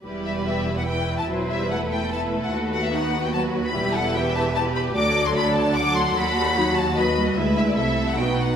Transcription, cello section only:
\new Staff \with { instrumentName = "Cello section" } { \clef bass \time 3/4 \key e \minor \tempo 4 = 148 e,2. | e,2. | dis,2. | e,2. |
d,2. | dis,2. | d,4 c4 b,4 | }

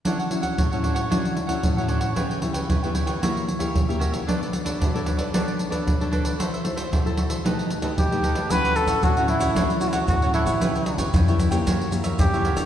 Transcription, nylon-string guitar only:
\new Staff \with { instrumentName = "Nylon-string guitar" } { \time 4/4 \key d \major \tempo 4 = 114 << { <fis cis' e'>8 <fis cis' e'>8. <fis cis' e'>8. <fis cis' e'>8 r16 <fis cis' e'>8 <fis cis' e'>8. | <g b e'>8 <g b e'>8 r16 <g b e'>8. <ais e' g'>8 r16 <ais e' g'>8 <ais e' g'>8. | <d' a' cis''>8. <d' a' cis''>8 <d' a' cis''>8. <d' a' cis''>8. <d' a' cis''>8 <d' a' cis''>8. | <e' a' c''>16 r16 <e' a' c''>8 r16 <e' a' c''>8. <a dis' g'>8. <a dis' g'>8 <a dis' g'>8. |
<fis cis' e'>8. <fis cis' e'>8 <fis cis' e'>8 <fis cis' e'>16 <fis cis' e'>16 r16 <fis cis' e'>8 r16 <fis cis' e'>8 <g b e'>16~ | <g b e'>8. <g b e'>8 <g b e'>8 <bes e' g'>8. <ais e' g'>8. <ais e' g'>8 <d' a' cis''>16 | } \\ { d4 a,4 d4 a,4 | cis4 cis4 fis4 cis4 | b4 fis4 b4 fis4 | fis4 fis4 b,4 r4 |
d4 a,4 d4 a,4 | cis4 cis4 fis4 cis4 | } >> }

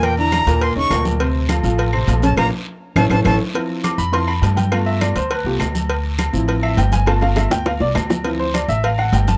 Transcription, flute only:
\new Staff \with { instrumentName = "Flute" } { \time 4/4 \key a \phrygian \tempo 4 = 204 g''8 bes''4. c'''8 des'''4 r8 | r2. r8 a''8 | bes''8 r4. a''8 a''8 a''8 r8 | \key g \mixolydian r1 |
r1 | r1 | r1 | r1 | }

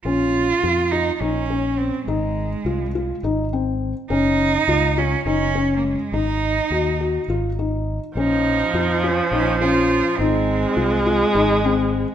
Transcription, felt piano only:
\new Staff \with { instrumentName = "Felt piano" } { \time 7/8 \key bes \minor \tempo 4 = 104 des'4 f'8 f'8 ees'8 des'4 | ees'4 f'8 f'8 ees'8 c'4 | des'4 f'8 f'8 ees'8 des'4 | ees'4 ges'8 ges'8 f'8 ees'4 |
des'4 f'8 f'8 ees'8 des'4 | ees'4 f'8 f'8 ees'8 c'4 | }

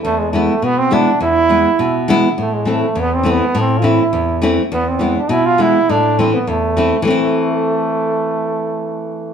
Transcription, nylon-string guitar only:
\new Staff \with { instrumentName = "Nylon-string guitar" } { \time 2/4 \key a \minor \tempo 4 = 103 << { r8 <e gis b e'>8 r8 <e gis b e'>8 | r8 <e gis b e'>8 r8 <e gis b e'>8 | r8 <e a c' e'>8 r8 <e a c' e'>8 | r8 <e a c' e'>8 r8 <e a c' e'>8 |
r8 <e gis b e'>8 r8 <e gis b e'>8 | r8 <e a c' e'>8 r8 <e a c' e'>8 | <e a c' e'>2~ | <e a c' e'>2 | } \\ { e,4 b,4 | e,4 b,4 | a,4 e,4 | a,4 e,4 |
e,4 b,4 | a,4 e,4 | r2 | r2 | } >> }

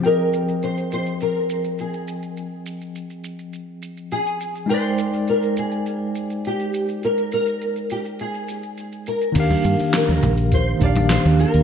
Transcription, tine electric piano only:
\new Staff \with { instrumentName = "Tine electric piano" } { \time 4/4 \key ees \major \tempo 4 = 103 <f c' aes' ees'' g''>1~ | <f c' aes' ees'' g''>1 | <aes ees' bes' c'' d'' g''>1~ | <aes ees' bes' c'' d'' g''>1 |
<ees bes d' g' f''>2~ <ees bes d' g' f''>8 <ees bes d' g' f''>4. | }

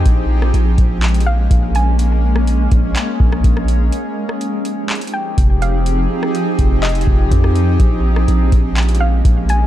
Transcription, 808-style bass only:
\new Staff \with { instrumentName = "808-style bass" } { \clef bass \time 4/4 \key bes \dorian \tempo 4 = 124 bes,,4 bes,,8 bes,,4. bes,,4~ | bes,,4. bes,,8 r8 bes,,8 bes,,4 | r2. f,,4~ | f,,8 r4 f,,4 f,,8 f,4 |
bes,,4 bes,,8 bes,,4. bes,,4 | }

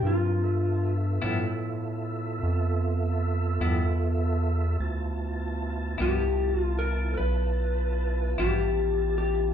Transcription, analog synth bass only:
\new Staff \with { instrumentName = "Analog synth bass" } { \clef bass \time 12/8 \key g \mixolydian \tempo 4. = 50 g,4. a,4. f,4. e,4. | d,4. c,4. b,,4. a,,4. | }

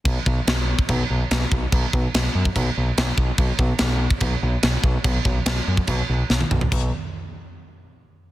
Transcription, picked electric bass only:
\new Staff \with { instrumentName = "Picked electric bass" } { \clef bass \time 4/4 \tempo 4 = 144 b,,8 b,,8 b,,4 b,,8 b,,8 b,,8 b,,8 | b,,8 b,,8 b,,8 fis,8 b,,8 b,,8 b,,8 b,,8 | b,,8 b,,8 b,,4 b,,8 b,,8 b,,8 b,,8 | b,,8 b,,8 b,,8 fis,8 b,,8 b,,8 b,,8 b,,8 |
b,,8 r2. r8 | }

